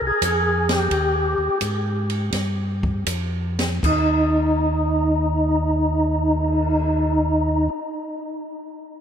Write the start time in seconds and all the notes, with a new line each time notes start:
0.01 C2
0.07 G#4
0.21 F2 G#4, kick, hi-hat pedal, ride
0.69 G4, snare, ride
0.91 D#2, kick, ride
1.38 D#2
1.61 G#2, kick, hi-hat pedal, ride
2.10 ride
2.32 G2, kick, snare, ride
2.83 kick
3.06 F2, kick, hi-hat pedal, ride
3.59 snare, ride
3.83 D#2 D#4, kick, crash
4.36 cymbal swell